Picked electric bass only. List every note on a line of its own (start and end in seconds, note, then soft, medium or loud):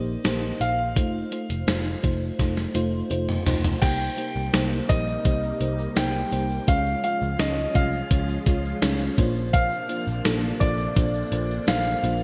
0.00 0.15 A#1 medium
0.25 0.51 A#1 medium
0.61 0.96 A#1 medium
0.96 1.22 F1 loud
1.50 1.63 F1 medium
1.68 1.94 F1 medium
2.04 2.30 F1 medium
2.39 2.65 F1 medium
2.75 3.01 F1 medium
3.11 3.37 F1 medium
3.46 3.72 F1 medium
3.82 4.08 C2 loud
4.36 4.49 C2 loud
4.54 4.79 C2 medium
4.90 5.15 A#1 medium
5.25 5.51 C2 medium
5.61 5.86 C2 medium
5.97 6.22 C2 medium
6.33 6.58 C2 loud
6.68 6.94 C#2 loud
7.22 7.35 C#2 medium
7.40 7.65 C#2 medium
7.75 8.01 C2 medium
8.11 8.37 C#2 loud
8.46 8.72 C#2 loud
8.82 9.08 C#2 loud
9.18 9.69 A#1 loud
10.07 10.20 A#1 medium
10.25 10.51 A#1 loud
10.61 10.87 A#1 medium
10.96 11.22 A#1 medium
11.32 11.58 A#1 loud
11.68 11.94 A#1 loud
12.03 12.23 A#1 loud